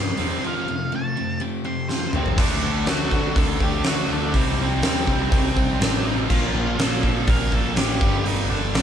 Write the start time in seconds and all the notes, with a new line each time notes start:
Already playing: G2 C3 D#3 G3 C4 G4
0.00 C6
0.17 E2 C3 G3 C4, open hi-hat
0.43 F2 C3 F3
0.47 F5
0.67 F2 C3 A3
0.91 F2 C3 A3
0.96 A5
1.16 F2 C3 C4
1.40 F2 C3 G4
1.64 F2 C3 C4 C6
1.88 F2 C3 F3 C5, snare
2.13 F2 C3 F3 C4 C5, mid tom
2.26 floor tom
2.37 D2 D3 A3 D4 A4 D5 F#5, kick, crash
2.63 D2
2.86 D2 D3 A3 D4 F#4 F#5, snare, open hi-hat
3.11 D3 A3 D4, kick
3.35 D2 D3 A3 D4 A4 A5, kick, open hi-hat
3.60 D2 G4 G5, kick
3.83 D2 D3 A3 D4 F#4, snare, open hi-hat
3.88 F#5
4.09 D2 D3 A3 D4 D5
4.31 C2 C3 G3 C4 D#4 C5 G5, kick, open hi-hat
4.57 C2
4.62 C4 C5
4.82 D#2 C3 G3 C4, snare, open hi-hat
4.87 C5
5.07 C2 C3 G3 C4, kick
5.32 C2 C3 G3 C4, kick, open hi-hat
5.57 C2, kick
5.80 A1 C3 G3 C4 D5, snare, open hi-hat
5.84 D4
6.05 C3 G3 C4 D#4 D#5
6.29 A#1 A#2 F3 A#3 D4 F4 F5, kick, crash
6.53 A#1
6.78 A#1 A#2 F3 A#3 A4 A5, snare, open hi-hat
7.03 A#2 F3 A#3, kick
7.27 A#1 A#2 F3 A#3 A#4 A#5, kick, open hi-hat
7.52 A#1 A4 A5, kick
7.75 A1 A#2 F3 A#3 G4 G5, snare, open hi-hat
7.97 G2 D3 G5, kick
8.01 G1 G3
8.25 G1 G2 D3 G3 D#4 D#5, open hi-hat
8.50 G1 D4 D5
8.73 A#1 G2 D3 G3, snare, open hi-hat
8.78 D4 D5